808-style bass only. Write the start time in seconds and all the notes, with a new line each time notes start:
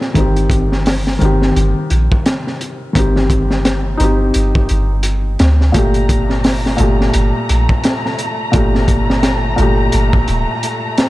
0.16 G1
1.22 G1
1.56 G1
1.91 A#1
2.96 G1
4.00 G1
4.36 G1
4.71 G1
5.40 D2
5.75 G1
6.80 G1
7.15 G1
7.50 A#1
8.54 G1
9.59 G1
9.94 G1
10.29 D1